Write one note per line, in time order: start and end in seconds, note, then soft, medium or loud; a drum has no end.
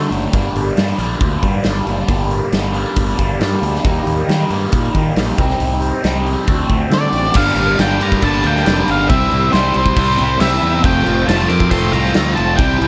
0.00 0.30 D3 medium
0.00 0.31 F#3 medium
0.00 0.28 A3 medium
0.00 0.32 A3 medium
0.00 0.35 D4 medium
0.00 0.28 F#4 medium
0.00 0.28 D5 medium
0.10 0.26 F#1 medium
0.10 open hi-hat medium
0.32 0.48 G1 medium
0.32 1.00 G2 medium
0.32 0.98 D3 medium
0.32 0.99 G3 medium
0.32 3.82 A#3 medium
0.32 0.99 A#3 medium
0.32 0.98 D4 medium
0.32 3.82 G4 medium
0.32 3.81 D5 medium
0.32 kick medium
0.32 open hi-hat medium
0.55 0.70 G1 medium
0.55 open hi-hat soft
0.77 0.92 G2 medium
0.77 snare loud
0.77 open hi-hat medium
0.98 1.14 A#1 medium
0.98 1.63 G2 medium
0.98 1.63 D3 medium
0.98 1.64 G3 medium
0.98 1.65 A#3 medium
0.98 1.63 D4 medium
0.98 open hi-hat soft
1.21 1.36 D2 medium
1.21 kick loud
1.21 open hi-hat medium
1.43 1.58 G2 medium
1.43 kick medium
1.43 open hi-hat soft
1.64 1.80 G1 medium
1.64 2.04 G2 medium
1.64 2.05 D3 medium
1.64 2.07 G3 medium
1.64 2.08 A#3 medium
1.64 2.07 D4 medium
1.64 snare loud
1.64 open hi-hat medium
1.86 2.02 F#1 medium
1.86 open hi-hat soft
2.05 2.40 G1 medium
2.05 2.72 G2 medium
2.05 2.72 D3 medium
2.05 2.74 G3 medium
2.05 2.73 A#3 medium
2.05 2.72 D4 medium
2.05 kick medium
2.05 open hi-hat medium
2.31 open hi-hat soft
2.52 2.83 G1 medium
2.52 snare medium
2.52 open hi-hat medium
2.73 3.37 G2 medium
2.73 3.38 D3 medium
2.73 3.40 G3 medium
2.73 3.39 A#3 medium
2.73 3.39 D4 medium
2.73 open hi-hat soft
2.96 3.12 G1 medium
2.96 kick loud
2.96 open hi-hat medium
3.19 3.34 G1 medium
3.19 kick medium
3.19 open hi-hat medium
3.39 3.82 G2 medium
3.39 3.56 G2 medium
3.39 3.83 D3 medium
3.39 3.85 G3 medium
3.39 3.83 A#3 medium
3.39 3.84 D4 medium
3.39 snare loud
3.39 open hi-hat medium
3.62 3.77 D2 medium
3.62 open hi-hat medium
3.75 snare soft
3.84 4.00 D#2 medium
3.84 4.49 D#3 medium
3.84 4.49 G3 medium
3.84 4.50 A#3 medium
3.84 5.38 A#3 medium
3.84 5.38 G4 medium
3.84 5.37 D#5 medium
3.84 kick loud
3.84 open hi-hat medium
3.88 4.48 D#4 medium
4.06 4.22 D#2 medium
4.06 open hi-hat soft
4.28 4.44 D#3 medium
4.28 snare medium
4.28 open hi-hat medium
4.50 4.66 G2 medium
4.50 5.15 D#3 medium
4.50 5.16 G3 medium
4.50 5.15 A#3 medium
4.50 5.15 D#4 medium
4.50 open hi-hat soft
4.72 4.88 A#2 medium
4.72 kick loud
4.72 open hi-hat medium
4.95 5.10 D#3 medium
4.95 kick medium
4.95 open hi-hat soft
5.16 5.32 A#1 medium
5.16 5.37 D#3 medium
5.16 5.37 G3 medium
5.16 5.38 A#3 medium
5.16 5.38 D#4 medium
5.16 snare loud
5.16 open hi-hat medium
5.37 5.53 C2 medium
5.37 6.02 C3 medium
5.37 6.03 G3 medium
5.37 6.47 C4 medium
5.37 6.03 C4 medium
5.37 6.04 D#4 medium
5.37 6.47 G4 medium
5.37 6.47 D#5 medium
5.37 kick loud
5.37 open hi-hat soft
5.50 snare soft
5.60 5.91 C2 medium
5.60 open hi-hat medium
5.82 open hi-hat soft
6.03 6.35 C2 medium
6.03 6.45 C3 medium
6.03 6.46 G3 medium
6.03 6.47 C4 medium
6.03 6.47 D#4 medium
6.03 snare loud
6.03 open hi-hat medium
6.26 open hi-hat soft
6.45 6.63 D2 medium
6.45 7.11 D3 medium
6.45 7.11 A3 loud
6.45 7.12 C4 medium
6.45 7.35 C4 medium
6.45 7.11 F#4 loud
6.45 7.35 F#4 medium
6.45 7.34 D5 medium
6.45 kick loud
6.45 open hi-hat medium
6.69 6.85 D2 medium
6.69 kick medium
6.69 open hi-hat soft
6.90 7.06 D3 medium
6.90 7.32 A3 medium
6.90 7.38 D5 medium
6.90 snare loud
6.90 open hi-hat medium
7.12 7.28 A1 medium
7.12 7.34 D3 medium
7.12 7.34 A3 medium
7.12 7.34 C4 medium
7.12 7.33 F#4 medium
7.12 open hi-hat medium
7.33 7.54 G1 loud
7.33 7.76 G2 medium
7.33 8.21 G2 loud
7.33 7.78 D3 loud
7.33 8.22 D3 loud
7.33 7.58 G3 loud
7.33 7.57 A#3 loud
7.33 9.08 A#3 medium
7.33 7.55 D4 loud
7.33 9.08 G4 medium
7.33 9.08 D5 medium
7.33 7.80 F5 medium
7.33 kick loud
7.33 crash loud
7.33 crash medium
7.38 8.26 G3 loud
7.56 7.75 G1 medium
7.56 7.78 G3 medium
7.56 7.78 A#3 medium
7.56 7.79 D4 medium
7.56 crash medium
7.77 7.98 G1 loud
7.77 8.22 G2 loud
7.77 8.22 D3 loud
7.77 8.02 G3 loud
7.77 8.00 A#3 loud
7.77 7.99 D4 loud
7.77 8.02 G5 medium
7.77 snare loud
7.77 crash medium
8.00 8.19 G2 medium
8.00 8.44 G3 medium
8.00 8.43 A#3 medium
8.00 8.41 D4 medium
8.00 8.21 G4 medium
8.00 8.24 A#5 medium
8.00 crash medium
8.12 kick medium
8.22 8.41 G1 medium
8.22 9.08 G2 medium
8.22 9.07 D3 medium
8.22 8.42 D4 medium
8.22 8.46 A5 medium
8.22 kick loud
8.22 crash medium
8.26 9.09 G3 medium
8.42 8.63 D2 loud
8.42 8.64 G3 medium
8.42 8.64 A#3 medium
8.42 8.66 D4 medium
8.42 crash medium
8.47 8.90 G5 loud
8.56 snare soft
8.64 8.85 F1 loud
8.64 9.07 D3 medium
8.64 9.08 G3 medium
8.64 9.08 A#3 medium
8.64 9.09 D4 medium
8.64 snare loud
8.64 crash medium
8.88 9.07 G1 medium
8.88 9.08 D4 medium
8.88 9.09 F5 medium
8.88 crash medium
9.08 9.28 C2 loud
9.08 9.94 C3 loud
9.08 9.52 C3 medium
9.08 9.32 G3 medium
9.08 10.82 G3 medium
9.08 9.95 G3 loud
9.08 9.33 C4 medium
9.08 9.99 C4 loud
9.08 10.81 E4 medium
9.08 9.30 E4 loud
9.08 10.82 C5 medium
9.08 9.50 E5 medium
9.08 kick loud
9.08 crash medium
9.31 9.50 C2 medium
9.31 9.52 G3 medium
9.31 9.54 C4 medium
9.31 9.54 E4 medium
9.31 crash medium
9.53 9.72 C2 medium
9.53 9.96 C3 loud
9.53 9.74 G3 loud
9.53 9.74 C4 loud
9.53 9.72 E4 loud
9.53 9.73 C5 medium
9.53 snare loud
9.53 crash medium
9.73 9.94 C2 medium
9.73 10.19 G3 medium
9.73 10.18 C4 medium
9.73 10.16 E4 medium
9.73 crash medium
9.77 10.37 C5 loud
9.86 kick medium
9.96 10.15 C2 loud
9.96 10.82 C3 medium
9.96 10.83 G3 medium
9.96 12.61 C4 medium
9.96 kick loud
9.96 crash loud
10.17 10.38 C2 medium
10.17 10.38 G3 medium
10.17 10.40 C4 medium
10.17 10.40 E4 medium
10.17 crash medium
10.39 10.59 C2 medium
10.39 10.81 C3 medium
10.39 10.81 G3 medium
10.39 10.82 C4 medium
10.39 10.83 E4 medium
10.39 10.81 E5 medium
10.39 snare loud
10.39 crash loud
10.62 10.81 E2 medium
10.62 crash medium
10.81 11.02 F1 medium
10.81 11.69 F2 loud
10.81 11.23 F3 medium
10.81 11.06 A3 loud
10.81 12.56 A3 medium
10.81 11.05 C4 loud
10.81 12.56 F4 medium
10.81 11.03 F4 medium
10.81 12.56 C5 medium
10.81 kick loud
10.81 crash medium
10.85 11.70 C3 loud
10.85 11.71 F3 loud
10.85 11.28 G5 loud
11.04 11.24 F1 medium
11.04 11.25 A3 medium
11.04 11.26 C4 medium
11.04 11.27 F4 medium
11.04 crash medium
11.24 11.46 F1 loud
11.24 11.69 F3 loud
11.24 11.50 A3 loud
11.24 11.49 C4 loud
11.24 11.47 F4 loud
11.24 11.50 A5 loud
11.29 snare loud
11.29 crash medium
11.48 11.68 F2 medium
11.48 11.93 A3 medium
11.48 11.93 C4 medium
11.48 11.90 F4 medium
11.48 11.69 A#4 loud
11.48 11.70 D6 loud
11.48 crash medium
11.60 kick loud
11.71 11.90 F1 medium
11.71 12.56 F2 medium
11.71 12.56 C3 medium
11.71 12.58 F3 medium
11.71 11.91 A4 medium
11.71 11.93 C6 loud
11.71 kick loud
11.71 crash medium
11.92 12.11 C2 loud
11.92 12.14 A3 medium
11.92 12.15 C4 medium
11.92 12.15 F4 medium
11.92 12.33 A#5 loud
11.92 crash medium
12.05 snare soft
12.14 12.34 D2 loud
12.14 12.56 F3 medium
12.14 12.57 A3 medium
12.14 12.57 C4 medium
12.14 12.57 F4 medium
12.14 snare loud
12.14 crash medium
12.35 12.56 F1 medium
12.35 12.56 F4 medium
12.35 12.56 A5 medium
12.35 crash medium
12.56 12.77 C2 loud
12.56 12.88 C3 loud
12.56 12.88 C3 medium
12.56 12.88 G3 loud
12.56 12.81 G3 loud
12.56 12.88 G3 medium
12.56 12.79 C4 loud
12.56 12.88 E4 medium
12.56 12.88 G5 medium
12.56 kick loud
12.56 crash medium
12.61 12.88 C4 loud
12.61 12.78 E4 loud
12.61 12.88 C5 medium
12.79 12.88 C2 loud
12.79 12.88 G3 medium
12.79 12.88 C4 medium
12.79 12.88 E4 medium
12.79 crash medium